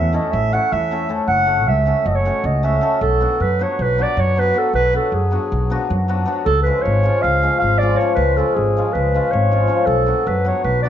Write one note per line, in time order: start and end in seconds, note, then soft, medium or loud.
0.00 0.17 E2 medium
0.00 0.14 E5 medium
0.13 0.25 A3 medium
0.13 0.26 C#4 medium
0.13 0.26 E4 medium
0.13 0.26 A4 medium
0.13 0.33 D#5 medium
0.32 0.56 A1 loud
0.32 0.54 E5 loud
0.53 0.65 A3 medium
0.53 0.65 C#4 medium
0.53 0.66 E4 medium
0.53 0.66 A4 medium
0.53 0.74 F#5 loud
0.72 1.06 E2 medium
0.72 1.10 E5 loud
0.91 1.03 A3 medium
0.91 1.03 C#4 medium
0.91 1.04 E4 medium
0.91 1.03 A4 medium
1.09 1.21 A3 medium
1.09 1.21 C#4 medium
1.09 1.21 E4 medium
1.09 1.22 A4 medium
1.28 1.67 F#1 medium
1.28 1.69 F#5 loud
1.46 1.59 A3 medium
1.46 1.59 C#4 medium
1.46 1.60 F#4 medium
1.46 1.60 A4 medium
1.67 1.90 C#2 medium
1.67 2.08 E5 medium
1.85 1.98 A3 medium
1.85 1.99 C#4 medium
1.85 1.99 F#4 medium
1.85 1.99 A4 medium
2.06 2.29 F#1 medium
2.06 2.17 D#5 medium
2.15 2.47 C#5 medium
2.25 2.38 A3 medium
2.25 2.38 C#4 medium
2.25 2.38 F#4 medium
2.25 2.39 A4 medium
2.44 2.77 C#2 medium
2.44 2.66 D#5 medium
2.63 2.75 A3 medium
2.63 2.75 C#4 medium
2.63 2.76 F#4 medium
2.63 2.76 A4 medium
2.63 3.00 E5 medium
2.81 2.93 A3 medium
2.81 2.94 C#4 medium
2.81 2.94 F#4 medium
2.81 2.94 A4 medium
3.01 3.24 B1 medium
3.01 3.42 A4 medium
3.20 3.58 F#3 medium
3.20 3.33 B3 medium
3.20 3.33 D4 soft
3.20 3.33 F#4 medium
3.40 3.63 F#2 medium
3.40 3.64 B4 medium
3.59 3.97 F#3 medium
3.59 3.72 B3 medium
3.59 3.72 D4 medium
3.59 3.72 F#4 medium
3.59 3.84 C#5 medium
3.79 4.02 B1 medium
3.79 4.04 B4 loud
3.98 4.35 F#3 medium
3.98 4.11 B3 medium
3.98 4.11 D4 medium
3.98 4.11 F#4 medium
3.98 4.21 D5 medium
4.17 4.50 F#2 medium
4.17 4.41 C#5 loud
4.36 4.53 F#3 medium
4.36 4.49 B3 medium
4.36 4.49 D4 medium
4.36 4.49 F#4 medium
4.36 4.60 B4 loud
4.54 4.92 F#3 medium
4.54 4.66 B3 medium
4.54 4.67 D4 soft
4.54 4.67 F#4 medium
4.58 4.75 A4 medium
4.74 4.97 B1 medium
4.74 4.93 B4 loud
4.93 5.30 F#3 medium
4.93 5.06 B3 medium
4.93 5.06 D4 medium
4.93 5.06 F#4 medium
4.93 5.15 A4 medium
5.12 5.35 F#2 medium
5.12 5.90 G#4 medium
5.31 5.69 F#3 medium
5.31 5.44 B3 medium
5.31 5.44 D4 medium
5.31 5.44 F#4 medium
5.52 5.75 B1 medium
5.70 6.07 F#3 medium
5.70 5.83 B3 medium
5.70 5.83 D4 medium
5.70 5.83 F#4 loud
5.90 6.23 F#2 medium
6.08 6.24 F#3 medium
6.08 6.21 B3 medium
6.08 6.21 D4 medium
6.08 6.21 F#4 medium
6.25 6.50 F#3 medium
6.25 6.38 B3 medium
6.25 6.39 D4 medium
6.25 6.39 F#4 medium
6.46 6.69 C#2 loud
6.46 6.62 A4 loud
6.63 7.02 F3 medium
6.63 7.03 G#3 medium
6.63 6.78 C#4 medium
6.63 6.84 B4 medium
6.67 6.78 F4 medium
6.82 7.08 G#1 medium
6.82 7.24 C#5 medium
7.03 7.41 F3 medium
7.03 7.42 G#3 medium
7.03 7.16 C#4 medium
7.03 7.17 F4 medium
7.22 7.47 C#2 medium
7.22 7.59 F5 loud
7.43 7.80 F3 medium
7.43 7.81 G#3 medium
7.43 7.55 C#4 medium
7.43 7.55 F4 medium
7.59 7.95 G#1 medium
7.59 7.80 F5 medium
7.78 7.99 F3 medium
7.78 7.98 D5 loud
7.82 7.99 G#3 medium
7.82 7.93 C#4 medium
7.82 7.93 F4 medium
7.97 8.36 F3 medium
7.97 8.37 G#3 medium
7.97 8.14 C#5 medium
8.02 8.12 C#4 medium
8.02 8.12 F4 medium
8.15 8.40 C#2 medium
8.15 8.38 B4 medium
8.37 8.75 F3 medium
8.37 8.76 G#3 medium
8.37 8.50 C#4 medium
8.37 8.50 F4 medium
8.37 8.57 A4 medium
8.55 8.79 G#1 medium
8.55 8.94 G#4 medium
8.77 9.13 F3 medium
8.77 9.14 G#3 medium
8.77 8.89 C#4 medium
8.77 8.89 F4 medium
8.93 9.18 C#2 medium
8.93 9.33 B4 medium
9.14 9.50 F3 medium
9.14 9.50 G#3 medium
9.14 9.26 C#4 medium
9.14 9.27 F4 medium
9.32 9.66 G#1 medium
9.32 9.87 C#5 medium
9.51 9.66 F3 medium
9.51 9.67 G#3 medium
9.51 9.64 C#4 soft
9.51 9.64 F4 medium
9.67 9.93 F3 medium
9.67 9.93 G#3 medium
9.67 9.81 C#4 medium
9.67 9.81 F4 medium
9.86 10.10 B1 medium
9.86 10.28 A4 loud
10.06 10.44 F#3 medium
10.06 10.19 B3 medium
10.06 10.19 D4 medium
10.06 10.20 F#4 medium
10.27 10.50 F#2 medium
10.27 10.47 B4 medium
10.45 10.83 F#3 medium
10.45 10.58 B3 medium
10.45 10.58 D4 medium
10.45 10.58 F#4 medium
10.45 10.64 C#5 medium
10.64 10.88 B1 medium
10.64 10.82 B4 medium
10.83 10.89 F#3 medium
10.83 10.89 B3 medium
10.83 10.89 D4 medium
10.83 10.89 F#4 medium
10.83 10.89 D5 medium